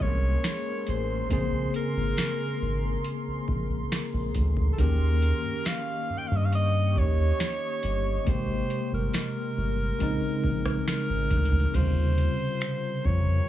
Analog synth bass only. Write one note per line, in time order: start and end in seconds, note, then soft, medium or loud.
0.00 0.36 C2 loud
0.88 1.23 A1 medium
1.31 1.66 A#1 loud
1.96 2.14 G#1 medium
2.62 2.97 G#1 medium
3.27 3.35 A#1 medium
3.48 3.84 A#1 loud
4.13 4.31 A#1 loud
4.35 4.71 D2 loud
4.79 5.32 D#2 loud
5.44 5.53 G2 soft
6.10 6.18 G2 soft
6.31 6.98 G2 loud
6.96 7.32 D#2 loud
7.83 8.19 G1 medium
8.27 8.62 G#1 loud
8.92 9.10 G1 medium
9.57 9.93 G1 loud
10.00 10.18 A#1 loud
10.22 10.31 A#1 soft
10.44 10.79 A#1 loud
11.09 11.32 G#1 medium
11.31 11.66 D2 medium
11.74 12.28 D#2 loud
13.05 13.40 F2 medium